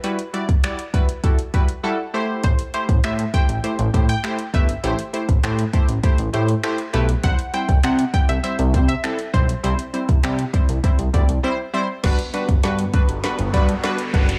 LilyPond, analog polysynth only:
\new Staff \with { instrumentName = "Analog polysynth" } { \time 4/4 \key g \major \tempo 4 = 100 <g e' fis' b'>8 <g e' fis' d''>8 <g e' fis' d''>8 <g e' fis' b'>8 <g e' fis' a'>8 <g e' fis' b'>8 <g e' fis' a'>8 <a e' g' c''>8~ | <a e' g' c''>8 <a e' g' c''>8 <a e' g' c''>8 <a e' g' c''>8 <a e' g' c''>8 <a e' g' c''>8 <a e' g' c''>8 <a e' g' b'>8 | <a e' g' c''>8 <a e' g' c''>8 <a e' g' c''>8 <a e' g' c''>8 <a e' g' c''>8 <a e' g' c''>8 <a e' g' c''>8 <a e' g' b'>8 | <g c' e' c''>8 <g c' e' c''>8 <g c' e' c''>8 <g c' e' g'>8 <g c' e' c''>8 <g c' e' c''>8 <g c' e' a'>8 <g c' e' c''>8 |
<g c' e' c''>8 <g c' e' c''>8 <g c' e' g'>8 <g c' e' c''>8 <g c' e' c''>8 <g c' e' d''>8 <g c' e' c''>8 <g c' e' c''>8 | <g d' fis' b'>8 <g d' fis' b'>8 <g d' fis' b'>8 <g d' fis' b'>8 <g d' fis' b'>8 <g d' fis' b'>8 <g d' fis' b'>8 <g d' fis' b'>8 | }